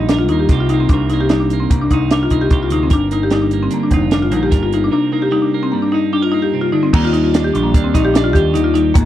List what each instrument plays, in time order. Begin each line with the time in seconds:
Already playing: picked electric bass A#1, clean electric guitar G2 G3 A#3 D#4
0.09 marimba D4, clean electric guitar A#4, snare, closed hi-hat
0.19 marimba F4
0.29 picked electric bass D#2, clean electric guitar A#3, marimba D#4, closed hi-hat
0.39 marimba G4
0.49 picked electric bass C2, clean electric guitar C3 G4, kick, snare, closed hi-hat
0.60 marimba F4
0.69 marimba D#4, closed hi-hat
0.74 clean electric guitar A#3
0.80 marimba C4
0.89 picked electric bass C2, clean electric guitar C3, marimba D4, kick, closed hi-hat
0.94 clean electric guitar A#4
1.09 clean electric guitar A#3, marimba D#4, snare, closed hi-hat
1.21 marimba G4
1.29 clean electric guitar G3, marimba D#4, snare, closed hi-hat
1.40 marimba D4
1.50 clean electric guitar A#3, closed hi-hat
1.60 marimba C4
1.70 picked electric bass C2, clean electric guitar G2, marimba A#3, kick, closed hi-hat
1.81 marimba D4
1.91 picked electric bass C2, marimba D#4, clean electric guitar D#4, kick, closed hi-hat
2.11 marimba D4, clean electric guitar A#4, snare, closed hi-hat
2.23 marimba F4
2.30 picked electric bass C2, clean electric guitar A#3, marimba D#4, kick, closed hi-hat
2.41 marimba G4
2.50 picked electric bass C2, clean electric guitar C3 G4, kick, closed hi-hat
2.63 marimba F4
2.70 picked electric bass D2, clean electric guitar A#3, marimba D#4, closed hi-hat
2.83 marimba C4
2.90 picked electric bass G1, clean electric guitar G2 A#4, marimba D4, kick, closed hi-hat
3.11 clean electric guitar A#3, marimba D#4, closed hi-hat
3.23 marimba G4
3.31 clean electric guitar G3, marimba D#4, snare, closed hi-hat
3.42 marimba D4
3.51 clean electric guitar A#3, closed hi-hat
3.63 marimba C4
3.71 clean electric guitar D3, marimba A#3, closed hi-hat
3.83 marimba D4
3.91 picked electric bass F1, marimba D#4, clean electric guitar F4, kick, closed hi-hat
4.11 marimba D4, clean electric guitar A#4, snare, closed hi-hat
4.22 marimba F4
4.32 picked electric bass A#1, clean electric guitar A#3, marimba D#4, closed hi-hat
4.43 marimba G4
4.51 picked electric bass G1, clean electric guitar G2 A#4, kick, snare, closed hi-hat
4.63 marimba F4
4.73 clean electric guitar A#3, marimba D#4, closed hi-hat
4.84 marimba D4
4.91 clean electric guitar C3 A#4, marimba D4
5.12 clean electric guitar A#3, marimba D#4
5.22 marimba G4
5.31 clean electric guitar G3, marimba D#4
5.42 marimba D4
5.54 clean electric guitar A#3
5.63 marimba C4
5.72 clean electric guitar G2, marimba A#3
5.82 marimba D4
5.92 marimba D#4, clean electric guitar D#4
6.13 marimba D4, clean electric guitar G4
6.22 marimba F4, clean electric guitar A#4
6.32 clean electric guitar A#3, marimba D#4
6.42 marimba G4
6.53 clean electric guitar C3
6.61 marimba F4
6.72 clean electric guitar D3, marimba D#4
6.83 marimba C4
6.93 picked electric bass D#2, clean electric guitar D#3 G3 D4 D#4 G4, marimba A#3, kick, crash
7.05 marimba F4
7.13 clean electric guitar G3, marimba D#4, closed hi-hat
7.24 marimba F4
7.34 clean electric guitar D4, snare, closed hi-hat
7.44 marimba G4
7.54 picked electric bass A#1, marimba D4, clean electric guitar G4, closed hi-hat
7.63 marimba A#3
7.74 picked electric bass D#2, clean electric guitar D4, kick, closed hi-hat
7.84 marimba C4
7.94 picked electric bass A#1, marimba D#4, clean electric guitar D#4, kick, snare, closed hi-hat
8.05 marimba G4
8.14 marimba D4, clean electric guitar D4, snare, closed hi-hat
8.24 marimba F4
8.33 picked electric bass D#2, marimba G4, clean electric guitar G4, kick, closed hi-hat
8.54 clean electric guitar D#3, marimba D#4, closed hi-hat
8.64 marimba F4
8.74 clean electric guitar G3, marimba D#4, closed hi-hat
8.94 picked electric bass G#1, clean electric guitar G#2, marimba A#3, kick, closed hi-hat